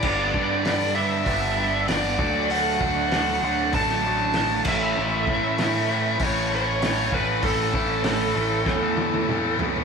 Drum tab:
CC |x---------------|--------------x-|----------------|----------------|
HH |----o---o---o---|o---o---o---o---|----o---o---o---|o---o-----------|
SD |----o-------o---|----o----o--o---|----o-------o---|----o---o-------|
T1 |----------------|----------------|----------------|----------oo----|
T2 |----------------|----------------|----------------|------------o---|
FT |----------------|----------------|----------------|--------------oo|
BD |o-o-----o-----o-|--o-----o-----o-|--o-----o-----o-|o-o-----o-------|